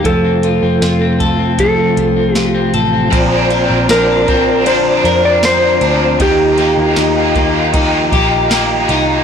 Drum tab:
RD |--------|xxxxxxxx|xxxxxxxx|
HH |xxxxxxxx|--------|--------|
TB |--------|--x---x-|--x---x-|
SD |--o---o-|--o---o-|--o---o-|
BD |o--oo---|o--o----|o--ooo--|